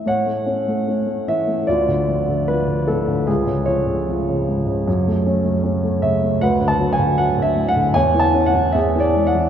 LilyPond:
<<
  \new Staff \with { instrumentName = "Grand piano" } { \time 4/4 \key a \major \tempo 4 = 76 << { fis''4. e''8 d''4 b'8 a'8 | gis'8 cis''2 r4 e''8 | \tuplet 3/2 { fis''8 a''8 gis''8 fis''8 e''8 fis''8 gis''8 a''8 fis''8 e''8 d''8 fis''8 } | } \\ { cis''2 f'2 | eis'8 eis'2 r4. | b'2 cis''4 gis'4 | } >> }
  \new Staff \with { instrumentName = "Grand piano" } { \clef bass \time 4/4 \key a \major a,16 a16 cis'16 a16 cis'16 a16 e16 a16 d,16 d16 f16 d16 f16 d16 a,16 d16 | cis,16 cis16 eis16 cis16 eis16 cis16 gis,16 cis16 fis,16 a16 cis'16 a16 cis'16 a16 cis16 a16 | d,16 d16 fis16 d16 fis16 d16 a,16 d16 e,16 e16 cis'16 e16 e,16 e16 gis16 e16 | }
>>